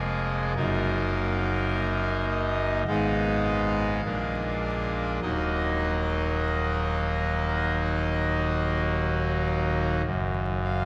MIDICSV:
0, 0, Header, 1, 2, 480
1, 0, Start_track
1, 0, Key_signature, -6, "minor"
1, 0, Tempo, 1153846
1, 240, Time_signature, 4, 2, 24, 8
1, 1682, Tempo, 1202405
1, 4400, End_track
2, 0, Start_track
2, 0, Title_t, "Pipe organ"
2, 0, Program_c, 0, 19
2, 0, Note_on_c, 0, 29, 61
2, 0, Note_on_c, 0, 41, 63
2, 0, Note_on_c, 0, 56, 58
2, 0, Note_on_c, 0, 58, 53
2, 0, Note_on_c, 0, 65, 53
2, 0, Note_on_c, 0, 68, 91
2, 221, Note_off_c, 0, 41, 0
2, 221, Note_off_c, 0, 56, 0
2, 221, Note_off_c, 0, 58, 0
2, 222, Note_off_c, 0, 29, 0
2, 222, Note_off_c, 0, 65, 0
2, 225, Note_off_c, 0, 68, 0
2, 231, Note_on_c, 0, 58, 59
2, 232, Note_on_c, 0, 30, 79
2, 232, Note_on_c, 0, 70, 115
2, 233, Note_on_c, 0, 42, 72
2, 234, Note_on_c, 0, 63, 63
2, 938, Note_off_c, 0, 70, 0
2, 958, Note_on_c, 0, 75, 103
2, 1162, Note_off_c, 0, 75, 0
2, 1177, Note_off_c, 0, 58, 0
2, 1178, Note_off_c, 0, 30, 0
2, 1178, Note_off_c, 0, 42, 0
2, 1179, Note_off_c, 0, 63, 0
2, 1196, Note_on_c, 0, 44, 61
2, 1196, Note_on_c, 0, 56, 52
2, 1197, Note_on_c, 0, 77, 111
2, 1198, Note_on_c, 0, 59, 56
2, 1199, Note_on_c, 0, 63, 54
2, 1200, Note_on_c, 0, 32, 64
2, 1666, Note_off_c, 0, 44, 0
2, 1666, Note_off_c, 0, 56, 0
2, 1667, Note_off_c, 0, 59, 0
2, 1668, Note_off_c, 0, 32, 0
2, 1668, Note_off_c, 0, 63, 0
2, 1683, Note_on_c, 0, 34, 61
2, 1683, Note_on_c, 0, 56, 49
2, 1684, Note_on_c, 0, 62, 46
2, 1685, Note_on_c, 0, 46, 63
2, 1685, Note_on_c, 0, 58, 49
2, 1900, Note_off_c, 0, 77, 0
2, 1912, Note_on_c, 0, 77, 85
2, 2116, Note_off_c, 0, 77, 0
2, 2141, Note_off_c, 0, 34, 0
2, 2141, Note_off_c, 0, 56, 0
2, 2142, Note_off_c, 0, 46, 0
2, 2142, Note_off_c, 0, 58, 0
2, 2142, Note_off_c, 0, 62, 0
2, 2150, Note_on_c, 0, 54, 45
2, 2150, Note_on_c, 0, 63, 47
2, 2151, Note_on_c, 0, 27, 55
2, 2152, Note_on_c, 0, 58, 50
2, 2152, Note_on_c, 0, 75, 95
2, 2153, Note_on_c, 0, 39, 60
2, 3586, Note_off_c, 0, 75, 0
2, 4068, Note_off_c, 0, 54, 0
2, 4068, Note_off_c, 0, 63, 0
2, 4069, Note_off_c, 0, 27, 0
2, 4069, Note_off_c, 0, 58, 0
2, 4070, Note_off_c, 0, 39, 0
2, 4084, Note_on_c, 0, 42, 70
2, 4086, Note_on_c, 0, 30, 73
2, 4316, Note_on_c, 0, 77, 99
2, 4400, Note_off_c, 0, 30, 0
2, 4400, Note_off_c, 0, 42, 0
2, 4400, Note_off_c, 0, 77, 0
2, 4400, End_track
0, 0, End_of_file